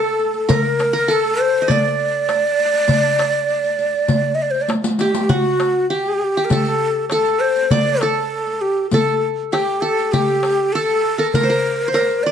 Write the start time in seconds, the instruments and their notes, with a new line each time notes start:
Already playing: ney A4, qanun A4 G5
0.19 riq
0.34 riq
0.49 qanun A#4, ney A#4, riq, darbuka dum
0.65 riq
0.79 riq, darbuka tek
0.93 qanun A#4
1.08 qanun A4, ney A4, darbuka ka
1.25 riq
1.40 ney C5, darbuka ka
1.54 darbuka ka
1.62 qanun D#5
1.68 qanun D5, ney D5, riq, darbuka dum
2.00 riq
2.29 riq, darbuka tek
2.60 riq
2.74 riq
2.88 riq, darbuka dum
3.03 riq, darbuka ka
3.19 riq, darbuka tek
3.49 riq
3.64 riq
3.79 riq, darbuka ka
3.94 riq, darbuka ka
4.08 riq, darbuka dum
4.35 ney D#5
4.39 ney D5, riq
4.51 ney C5, riq
4.56 darbuka ka
4.61 ney D5
4.68 riq, darbuka tek
4.84 riq, darbuka ka
4.99 ney G4, qanun G4, riq, darbuka ka
5.14 riq
5.24 ney G4
5.29 qanun F#4, ney F#4, riq, darbuka dum
5.45 riq
5.60 riq, darbuka tek
5.90 qanun G4, ney G4
6.06 riq
6.22 darbuka ka
6.37 qanun G4
6.45 ney A#4
6.50 ney A4, qanun A4, riq, darbuka dum
7.10 ney A4, qanun A4, riq, darbuka tek
7.26 riq
7.40 ney C5
7.56 riq
7.71 ney D5, qanun D5, riq, darbuka dum
7.87 riq
8.00 ney A4, qanun A4, riq, darbuka tek
8.47 riq
8.61 ney G4, darbuka ka
8.90 ney A4, qanun A4, riq, darbuka dum
9.52 ney G4, qanun G4, riq, darbuka tek
9.67 riq
9.81 ney A4, qanun A4, darbuka ka
9.99 riq
10.12 ney G4, qanun G4, riq, darbuka dum
10.28 riq, darbuka ka
10.43 riq, darbuka tek
10.73 ney A4, qanun A4
10.89 riq
11.05 darbuka ka
11.18 qanun A4 A#4
11.32 ney A#4, qanun A#4, riq, darbuka dum
11.43 qanun C5
11.50 qanun A#4
11.88 ney A#4, qanun C5
11.94 qanun A#4, riq, darbuka tek
12.10 riq
12.23 ney D5, qanun D5, darbuka ka